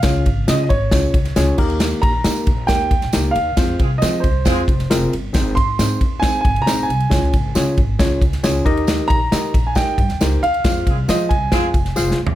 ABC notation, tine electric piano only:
X:1
M:4/4
L:1/8
Q:1/4=136
K:Ebmix
V:1 name="Tine electric piano"
[DFAd] z [DFAe] z [DFAd] z [DFAd] [B,EGB]- | [B,EGB] z [B,EGB] z [B,EGB] z [B,EGB] z | [CFAc] z [CFAc] z [CFAc] z [CFAB] z | [CEAc] z [CEAc] z [CEAc] z [CEAc] z |
[DFAd] z [DFAd] z [DFAd] z [DFAd] [EGBe]- | [EGBe] z [EGBe] z [EGBe] z [EGBc] z | [FAcf] z [FAcf] z [FAcf] z [FAcf] z |]
V:2 name="Tine electric piano" clef=bass
D,3 z4 E,- | E,2 z6 | z8 | A,,3 z4 z |
D,3 z4 E,- | E,2 z6 | z8 |]